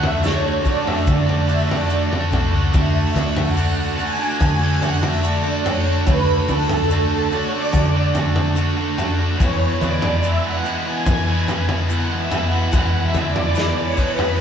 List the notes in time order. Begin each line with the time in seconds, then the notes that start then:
Already playing: D2 D3 A3 D4 F#4
0.00 E5, floor tom, mid tom
0.20 D3 A3 D4 C#5, shaker
0.25 F#4, snare
0.63 D3 A3 D4 D5, kick, shaker
0.67 F#4
0.85 A3 D4 F#4 E5, floor tom
1.06 D3 D5, kick, floor tom, shaker
1.26 A3 D4 F#4, floor tom
1.47 D3 A3 D4 F#4 E5, shaker
1.68 A3 D4 F#4 D5, floor tom, mid tom
1.89 D3 A3 D4 F#4, shaker
2.10 A3 D4 F#4, floor tom, mid tom
2.31 B1 D3 A3 D4 F#4, floor tom, shaker
2.52 C#2 A3 D4 F#4
2.73 D2 D3 A3 D4 F#4 E5, kick, floor tom, shaker
3.14 D2 D3 A3 D4 F#4, mid tom, shaker
3.37 F#5, floor tom
3.56 D3 A3 D4 F#4, shaker
3.97 D3 A3 D4 F#4, shaker
4.01 G#5
4.18 A3 D4 F#4
4.40 D3, kick, floor tom, shaker
4.60 A3 D4 F#4
4.80 D3 A3 D4 F#4, floor tom, shaker
4.84 F#5
5.01 A3 D4 F#4, floor tom, mid tom
5.06 E5
5.18 D3 E5
5.23 A3 D4 F#4 D5, shaker
5.43 A3 D4 F#4
5.64 D3 A3 D4 F#4 C#5, floor tom, shaker
5.85 A3 D4 F#4
6.05 D2 D3 A3 D4 F#4 B4, kick, floor tom, shaker
6.47 D2 D3 A3 D4 F#4 A4, mid tom, shaker
6.69 floor tom
6.89 D3 A3 D4 F#4, shaker
7.31 D3 A3 D4 F#4 C#5, shaker
7.52 A3 D4 F#4 D5
7.73 D3, kick, floor tom, shaker
7.94 A3 D4 F#4
8.13 D3 A3 D4 F#4, floor tom, shaker
8.34 A3 D4 F#4, floor tom, mid tom
8.55 D3 A3 D4 F#4, shaker
8.76 A3 D4 F#4
8.97 D3 A3 D4 F#4, floor tom, shaker
9.18 A3 D4 F#4
9.38 E2 E3 G#3 B3 E4, kick, floor tom, shaker
9.43 C#5
9.80 E2 E3 G#3 B3 E4 D5, mid tom, shaker
10.02 floor tom
10.22 E3 G#3 B3 E4 E5, shaker
10.44 F#5
10.63 E3 G#3 B3 E4, shaker
10.84 G#3 B3 E4 G#5
11.06 E3, kick, floor tom, shaker
11.26 G#3 B3 E4
11.47 E3 G#3 B3 E4, floor tom, shaker
11.67 G#3 B3 E4, floor tom, mid tom
11.88 E3 G#3 B3 E4 F#5, shaker
12.10 G#3 B3 E4
12.17 E5
12.30 E3 G#3 B3 E4, floor tom, shaker
12.45 F#5
12.52 G#3 B3 E4
12.72 E2 E3 G#3 B3 E4 F#5, kick, floor tom, shaker
13.01 E5
13.14 E2 E3 G#3 B3 E4, mid tom, shaker
13.27 D5
13.36 floor tom, mid tom
13.55 E3 G#3 B3 E4, snare, shaker
13.83 C#5
13.96 E3 G#3 B3 E4, kick, shaker
14.10 B4
14.17 G#3 B3 E4, floor tom
14.38 C#5